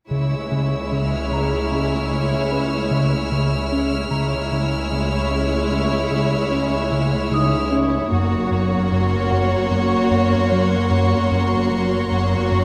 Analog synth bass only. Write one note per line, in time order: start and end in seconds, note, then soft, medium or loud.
0.11 0.35 C#3 medium
0.52 0.75 C#3 soft
0.92 1.16 C#3 soft
1.31 1.55 C#3 soft
1.72 1.95 C#3 medium
2.11 2.35 C#3 soft
2.51 2.75 C#4 soft
2.91 3.15 C#3 medium
3.32 3.55 C#3 soft
3.72 3.96 C#4 soft
4.11 4.35 C#3 medium
4.52 4.76 C#3 soft
4.92 5.16 C#3 soft
5.31 5.55 C#3 soft
5.71 5.95 C#3 medium
6.11 6.35 C#3 soft
6.51 6.75 C#4 soft
6.92 7.15 C#3 medium
7.31 7.55 C#3 medium
7.72 7.95 C#4 soft
8.12 8.36 F#2 medium
8.51 8.75 F#2 soft
8.92 9.16 F#2 soft
9.32 9.56 F#2 soft
9.71 9.95 F#2 medium
10.11 10.35 F#2 soft
10.52 10.76 F#3 soft
10.91 11.15 F#2 medium
11.32 11.55 F#2 medium
11.72 11.95 F#3 soft
12.12 12.35 F#2 medium
12.52 12.64 F#2 soft